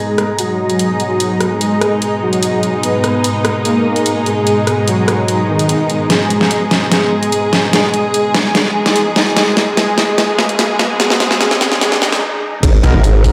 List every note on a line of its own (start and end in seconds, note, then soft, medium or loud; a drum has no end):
0.00 12.18 G#2 medium
0.00 12.18 B2 medium
0.00 0.31 G#3 medium
0.00 12.18 G#3 medium
0.00 6.08 D#4 medium
0.00 0.31 G#4 loud
0.00 12.22 G#4 medium
0.00 12.22 D#5 medium
0.00 12.22 A#5 medium
0.18 cross-stick medium
0.18 closed hi-hat medium
0.38 0.92 F#3 medium
0.38 0.92 F#4 medium
0.38 closed hi-hat medium
0.70 closed hi-hat medium
0.79 closed hi-hat medium
1.00 1.53 F#3 medium
1.00 1.53 F#4 loud
1.00 closed hi-hat medium
1.20 closed hi-hat medium
1.41 cross-stick medium
1.41 closed hi-hat soft
1.61 2.14 G#3 medium
1.61 2.14 G#4 loud
1.61 closed hi-hat medium
1.81 cross-stick medium
1.81 closed hi-hat medium
2.02 closed hi-hat medium
2.22 2.76 F#3 medium
2.22 2.76 F#4 loud
2.33 closed hi-hat medium
2.43 closed hi-hat medium
2.63 closed hi-hat soft
2.83 3.57 B3 medium
2.83 3.57 B4 loud
2.83 closed hi-hat medium
3.04 cross-stick medium
3.04 closed hi-hat soft
3.24 closed hi-hat medium
3.45 cross-stick medium
3.45 closed hi-hat medium
3.65 4.18 A#3 medium
3.65 4.18 A#4 loud
3.65 closed hi-hat medium
3.96 closed hi-hat soft
4.06 closed hi-hat medium
4.26 4.80 G#3 medium
4.26 4.80 G#4 loud
4.26 closed hi-hat soft
4.47 closed hi-hat medium
4.67 cross-stick medium
4.67 closed hi-hat soft
4.88 5.41 F#3 medium
4.88 5.41 F#4 loud
4.88 closed hi-hat medium
5.08 cross-stick medium
5.08 closed hi-hat soft
5.28 closed hi-hat medium
5.49 6.02 D#3 medium
5.49 6.02 D#4 loud
5.59 closed hi-hat soft
5.69 closed hi-hat medium
5.90 closed hi-hat soft
6.10 6.84 G#3 medium
6.10 12.20 G#4 medium
6.10 6.84 G#4 medium
6.10 snare soft
6.10 closed hi-hat medium
6.10 riser medium
6.30 closed hi-hat soft
6.41 snare soft
6.51 closed hi-hat medium
6.71 snare soft
6.71 closed hi-hat soft
6.92 7.65 G#3 medium
6.92 7.65 G#4 loud
6.92 snare medium
6.92 closed hi-hat medium
7.23 closed hi-hat medium
7.32 closed hi-hat medium
7.53 snare medium
7.53 closed hi-hat soft
7.73 8.47 G#3 medium
7.73 8.47 G#4 loud
7.73 snare medium
7.73 closed hi-hat medium
7.94 closed hi-hat medium
8.14 closed hi-hat medium
8.34 snare medium
8.34 closed hi-hat medium
8.55 9.29 G#3 medium
8.55 9.29 G#4 loud
8.55 snare medium
8.55 closed hi-hat medium
8.86 snare medium
8.86 closed hi-hat medium
8.96 closed hi-hat medium
9.16 snare medium
9.16 closed hi-hat soft
9.36 9.76 G#3 medium
9.36 9.76 G#4 loud
9.36 snare medium
9.36 closed hi-hat medium
9.57 snare medium
9.57 closed hi-hat medium
9.77 10.17 G#3 medium
9.77 10.17 G#4 loud
9.77 snare medium
9.77 closed hi-hat medium
9.98 snare medium
9.98 closed hi-hat medium
10.18 10.57 G#3 medium
10.18 10.57 G#4 loud
10.18 snare medium
10.18 closed hi-hat medium
10.39 snare medium
10.49 closed hi-hat medium
10.59 10.98 G#3 medium
10.59 10.98 G#4 loud
10.59 snare medium
10.59 closed hi-hat medium
10.79 snare medium
10.79 closed hi-hat medium
11.00 11.19 G#3 medium
11.00 11.19 G#4 loud
11.00 snare medium
11.00 closed hi-hat medium
11.10 snare medium
11.20 11.39 G#3 medium
11.20 11.39 G#4 loud
11.20 snare medium
11.20 closed hi-hat medium
11.31 snare medium
11.40 11.59 G#3 medium
11.40 11.59 G#4 loud
11.40 snare loud
11.40 closed hi-hat medium
11.51 snare medium
11.61 11.80 G#3 medium
11.61 11.80 G#4 loud
11.61 snare loud
11.61 closed hi-hat medium
11.72 snare medium
11.81 12.00 G#3 medium
11.81 12.00 G#4 loud
11.81 snare loud
11.81 closed hi-hat medium
11.92 snare medium
12.02 12.21 G#3 medium
12.02 12.21 G#4 loud
12.02 snare loud
12.12 snare medium
12.12 closed hi-hat medium
12.63 12.82 G#1 loud
12.63 13.32 G#3 medium
12.63 13.32 B3 medium
12.63 13.32 G#4 medium
12.63 13.32 A#5 medium
12.63 kick loud
12.63 closed hi-hat medium
12.63 crash loud
12.67 13.32 D#5 medium
12.83 12.92 B1 loud
12.83 13.00 B3 loud
12.83 13.00 D#4 medium
12.83 13.00 G#4 medium
12.83 13.00 A#4 loud
12.83 closed hi-hat medium
12.94 13.32 G#1 loud
12.94 cross-stick medium
13.04 closed hi-hat medium
13.24 13.32 B3 medium
13.24 13.32 D#4 medium
13.24 13.32 G#4 medium
13.24 13.32 A#4 medium
13.24 kick medium
13.24 open hi-hat medium